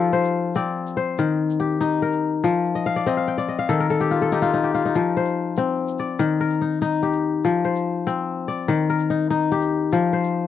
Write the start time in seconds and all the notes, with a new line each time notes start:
Already playing: F3 D#4 F4 G4 A4 C5
0.13 C5
0.24 shaker
0.55 C4 D5, shaker
0.86 shaker
0.97 C5, shaker
1.18 D#3, shaker
1.50 shaker
1.60 G4
1.81 D#4, shaker
1.91 shaker
2.02 A#4
2.12 shaker
2.44 F3, shaker
2.65 shaker
2.75 D#5, shaker
2.86 F5, shaker
2.96 D5
3.06 C4 D#5, shaker
3.17 F5
3.28 G5, shaker
3.38 D5, shaker
3.48 D#5
3.59 F5, shaker
3.69 D#3 A4, shaker
3.80 A#4, shaker
3.90 A4
4.00 G4, shaker
4.11 F4, shaker
4.22 A4
4.32 D#4 G4, shaker
4.42 F4, shaker
4.54 D#4
4.63 G4, shaker
4.75 F4
4.85 D#4
4.95 F3, shaker
5.17 C5
5.25 shaker
5.57 C4, shaker
5.88 shaker
5.98 D5, shaker
6.19 D#3, shaker
6.41 A#4
6.50 shaker
6.61 D#4
6.81 D#4, shaker
6.92 shaker
7.03 G4
7.13 shaker
7.44 F3, shaker
7.65 C5
7.75 shaker
8.07 C4, shaker
8.48 D5, shaker
8.68 D#3, shaker
8.90 A#4
8.99 shaker
9.10 D#4
9.30 D#4, shaker
9.41 shaker
9.52 G4
9.61 shaker
9.92 F3, shaker
10.13 C5
10.24 shaker